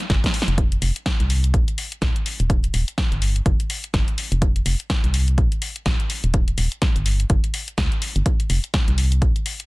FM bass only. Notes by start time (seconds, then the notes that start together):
0.10 G1
0.48 F1
0.82 F1
1.20 C2
1.54 A#1
2.02 A#1
2.40 D#1
2.74 D#1
3.12 G1
3.46 G1
3.94 G1
4.32 F1
4.66 F1
5.04 C2
5.38 A#1
5.86 A#1
6.24 D#1
6.58 D#1
6.96 G1
7.30 G1
7.78 C#2
8.16 G1
8.50 F1
8.88 C2
9.22 A#1